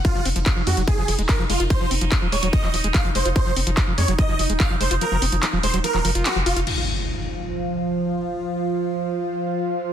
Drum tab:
CC |----------------|----------------|----------------|----------------|
HH |x-oxx-oxx-oxx-ox|x-oxx-oxx-oxx-ox|x-oxx-oxx-oxx-ox|x-oxx-oxx-oxx-ox|
CP |----x-------x---|----x----x--x---|----x-------x---|----x----x--x---|
BD |o---o---o---o---|o---o---o---o---|o---o---o---o---|----------------|

CC |x---------------|----------------|
HH |----------------|----------------|
CP |----------------|----------------|
BD |----------------|----------------|